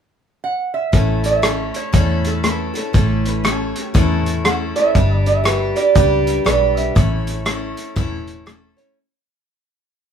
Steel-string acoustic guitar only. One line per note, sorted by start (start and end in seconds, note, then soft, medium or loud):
0.92 1.43 A2 soft
0.92 1.43 E3 medium
0.92 1.41 A3 medium
0.92 1.42 C#4 medium
0.92 1.43 E4 medium
0.92 1.44 A4 medium
1.42 1.92 A3 medium
1.42 1.93 C#4 medium
1.42 1.93 E4 medium
1.42 1.94 A4 medium
1.92 2.44 A2 medium
1.92 2.44 E3 medium
1.92 2.42 A3 medium
1.92 2.43 C#4 medium
1.92 2.44 E4 medium
1.92 2.45 A4 medium
2.43 2.75 A3 medium
2.43 2.75 C#4 medium
2.43 2.74 E4 medium
2.43 2.72 A4 medium
2.74 2.94 A3 soft
2.74 2.94 C#4 soft
2.74 2.94 E4 soft
2.74 2.94 A4 soft
2.93 3.44 A2 medium
2.93 3.45 E3 medium
2.93 3.42 A3 medium
2.93 3.44 C#4 medium
2.93 3.45 E4 medium
2.93 3.45 A4 medium
3.44 3.94 A3 medium
3.44 3.94 C#4 medium
3.44 3.95 E4 medium
3.44 3.95 A4 medium
3.94 4.45 A2 medium
3.94 4.45 E3 medium
3.94 4.43 A3 medium
3.94 4.45 C#4 medium
3.94 4.46 E4 medium
3.94 4.46 A4 medium
4.45 4.76 A3 medium
4.45 4.77 C#4 medium
4.45 4.75 E4 medium
4.45 4.74 A4 medium
4.75 4.95 A3 soft
4.75 4.96 C#4 soft
4.75 4.96 E4 soft
4.75 4.95 A4 soft
4.95 5.43 G3 medium
4.95 5.44 D4 medium
4.95 5.45 G4 medium
4.95 5.46 B4 medium
5.44 5.76 G3 medium
5.44 5.77 D4 medium
5.44 5.77 G4 medium
5.44 5.75 B4 medium
5.76 5.95 D4 soft
5.76 5.95 G4 soft
5.76 5.95 B4 soft
5.95 6.43 G3 medium
5.95 6.44 D4 medium
5.95 6.45 G4 medium
5.95 6.46 B4 medium
6.45 6.95 G3 soft
6.45 6.96 D4 medium
6.45 6.97 G4 medium
6.45 6.97 B4 medium
6.95 7.46 A2 soft
6.95 7.46 E3 medium
6.95 7.44 A3 medium
6.95 7.45 C#4 medium
6.95 7.46 E4 medium
6.95 7.47 C#5 medium
7.45 7.95 A3 medium
7.45 7.96 C#4 medium
7.45 7.96 E4 medium
7.45 7.97 C#5 medium
7.96 8.46 A2 medium
7.96 8.47 E3 medium
7.96 8.45 A3 medium
7.96 8.46 C#4 medium
7.96 8.47 E4 medium
7.96 8.47 C#5 medium
8.46 8.77 A3 medium
8.46 8.78 C#4 medium
8.46 8.77 E4 medium
8.46 8.75 C#5 medium
8.77 8.98 A3 soft
8.77 8.98 C#4 soft
8.77 8.97 E4 soft
8.77 8.96 C#5 soft